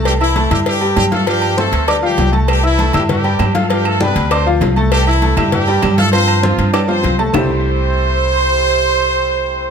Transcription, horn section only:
\new Staff \with { instrumentName = "Horn section" } { \time 4/4 \key c \major \tempo 4 = 198 << { g'8 e'4 g'8 g'4 g'8 a'8 | g'4 a'4 g'8 g'4 r8 | g'8 e'4 g'8 g'4. a'16. a'32 | g'8 a'8 b'4 c''8 r4. |
g'8 e'4 g'8 g'4. a'8 | c''4 f'4 g'8 c''4 r8 | c''1~ | c''1 | } \\ { g8 e4 g8 g4 g8 a8 | g4 a4 g8 g4 r8 | g8 e4 g8 g4. a8 | g8 a8 b4 c'8 r4. |
g8 e4 g8 g4. a8 | c'4 f4 g8 c'4 r8 | r1 | r1 | } >> }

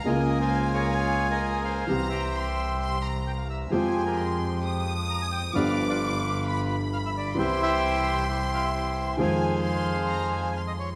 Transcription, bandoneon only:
\new Staff \with { instrumentName = "Bandoneon" } { \time 4/4 \key f \minor \tempo 4 = 132 << { ees''8. c''8. des''4~ des''16 ees''8. f''8~ | f''8 e''2 r8 g''16 f''16 e''8 | c''8. bes'8. r4. bes''16 aes''16 g''8 | f''8. d''8. r4. f''16 e''16 d''8 |
c''8 e''4. c''8 f''16 e''16 c''4 | f''2. f''16 ees''16 des''8 | } \\ { <aes' bes'>8. <f' aes'>8. <f' aes'>4~ <f' aes'>16 <aes' bes'>8. c''8~ | c''8 <g' c''>2 r4. | <g' aes'>8. g'2 r4 r16 | <b' d''>8. <f' b'>2 r4 r16 |
<e' g'>8 <g' c''>4. <e' g'>4 <e' g'>4 | <aes' c''>2. r4 | } >> }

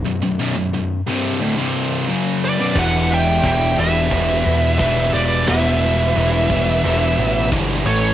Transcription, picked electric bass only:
\new Staff \with { instrumentName = "Picked electric bass" } { \clef bass \time 4/4 \key e \dorian \tempo 4 = 88 r1 | e,,4 e,,8 e,,8 e,,8 e,8 e,,8 e,,8 | e,,4 e,,8 e,,8 e,,8 a,,8 g,,8 a,,8 | }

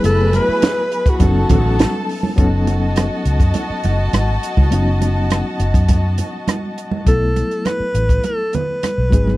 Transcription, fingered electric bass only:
\new Staff \with { instrumentName = "Fingered electric bass" } { \clef bass \time 4/4 \key b \mixolydian \tempo 4 = 102 fis,,8. r4 r16 fis,,8 a,,8. r8. | fis,,4~ fis,,16 r16 cis,16 fis,16 r8 fis,,8 gis,,8 r16 cis,16 | fis,,4~ fis,,16 r16 fis,,16 fis,4 r4 r16 | b,,8. r8. a,,8 r4 r16 b,,16 gis,,8 | }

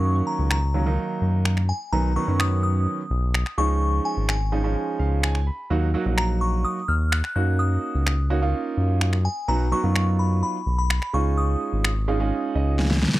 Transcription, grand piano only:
\new Staff \with { instrumentName = "Grand piano" } { \time 4/4 \key des \mixolydian \tempo 4 = 127 << { r1 | r1 | r2 r8 f''8 aes''8 ces'''8 | r1 |
r1 | r1 | r2 r8 ees''8 aes''4 | } \\ { <ees ges bes des'>4 r8 <ees ges bes des'>16 <ees ges bes ees'>4. r8. | <dis fis b dis'>8 <dis fis b dis'>16 <dis fis b des'>4. r4 r16 <f aes des' ees'>8~ | <f aes des' ees'>4 r8 <f aes des' ees'>16 <f aes des' ees'>4. r8. | <ges bes ees' ges'>8 <ges bes ees' ges'>16 <ges bes ees' ges'>4. r4 r16 <bes des' ees' ges'>8~ |
<bes des' ees' ges'>4 r8 <bes des' ees' ges'>16 <bes des' ees' f'>4. r8. | <fis b dis' fis'>8 <fis b dis' fis'>16 <fis b dis' f'>4. r4 r16 <aes des' ees' f'>8~ | <aes des' ees' f'>4 r8 <aes des' ees' f'>16 <aes des' ees' f'>4. r8. | } >> }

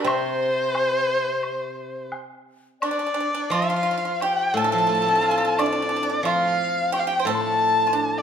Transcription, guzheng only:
\new Staff \with { instrumentName = "Guzheng" } { \clef bass \time 4/4 \tempo 4 = 88 c2. r4 | r4 f4. a,16 f16 a16 c'16 f'8~ | f'4 f4. a,4. | }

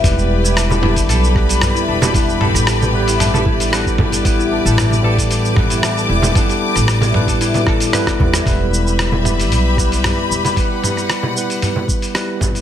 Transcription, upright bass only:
\new Staff \with { instrumentName = "Upright bass" } { \clef bass \time 4/4 \key e \minor \tempo 4 = 114 e,,2 b,,4~ b,,16 r16 e,,8~ | e,,8. a,,2.~ a,,16~ | a,,8. a,,2~ a,,8. e,,16 r16 | r8. a,,2~ a,,16 r8 e,16 r16 |
e,,2 b,,4~ b,,16 r16 e,,16 r16 | r1 | }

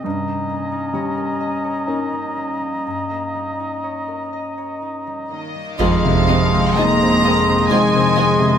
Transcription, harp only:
\new Staff \with { instrumentName = "Harp" } { \time 3/4 \key f \phrygian \tempo 4 = 62 <g, ees' ees''>16 g16 bes16 ees'16 des''16 bes'16 ees''16 des''16 ees'16 g16 bes16 g16 | g,16 bes16 g16 ees'16 des''16 bes'16 ees''16 des''16 ees'16 g16 bes16 g16 | f,16 c16 aes16 c16 ees'16 c16 aes16 c16 ees'16 c16 aes16 c16 | }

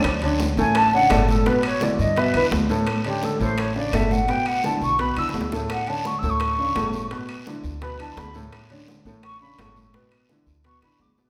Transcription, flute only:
\new Staff \with { instrumentName = "Flute" } { \time 4/4 \key g \lydian \tempo 4 = 170 r4. gis''8 a''8 fis''8 d''8 a'8 | b'8 cis''8 d''8 ees''8 e''8 b'8 r4 | r8 g'8 a'8 c''8 cis''8 d''8 e''8 fis''8 | g''8 fis''8 a''8 cis'''8 b''8 e'''8 r4 |
fis''8 a''8 \tuplet 3/2 { cis'''8 e'''8 cis'''8~ } cis'''2 | r2 b''8 a''8 b''8 r8 | r2 cis'''8 b''8 cis'''8 r8 | r2 cis'''8 b''8 d'''8 r8 | }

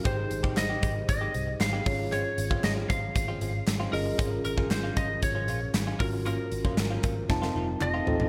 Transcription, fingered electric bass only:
\new Staff \with { instrumentName = "Fingered electric bass" } { \clef bass \time 4/4 \key des \lydian \tempo 4 = 116 aes,,8 aes,,8 aes,,8 aes,,8 aes,,8 c,8 aes,,8 aes,,8~ | aes,,8 aes,,8 aes,,8 aes,,8 aes,,8 aes,,8 aes,,8 g,,8 | aes,,8 aes,,8 aes,,8 aes,,8 aes,,8 bes,,8 aes,,8 aes,,8~ | aes,,8 aes,,8 aes,,8 aes,,8 f,,8 f,,8 f,,8 a,,8 | }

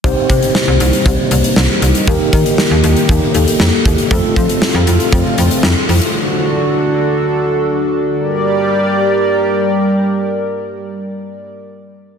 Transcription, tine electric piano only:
\new Staff \with { instrumentName = "Tine electric piano" } { \time 4/4 \key g \minor \tempo 4 = 118 <c' ees' g' c''>1 | <bes ees' g' bes'>2~ <bes ees' g' bes'>8 <bes ees' g' a'>4. | <a c' f' a'>1 | r1 |
r1 | r1 | }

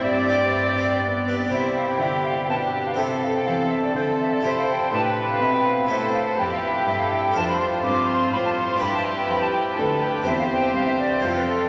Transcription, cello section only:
\new Staff \with { instrumentName = "Cello section" } { \clef bass \time 3/4 \key c \major \tempo 4 = 123 g,2~ g,8 r8 | c4 d4 b,4 | c4 e4 d4 | c4 a,4 b,4 |
a,4 f,4 g,4 | f,4 g,4 a,4 | g,4 f,4 d,4 | e,4 c,4 f,4 | }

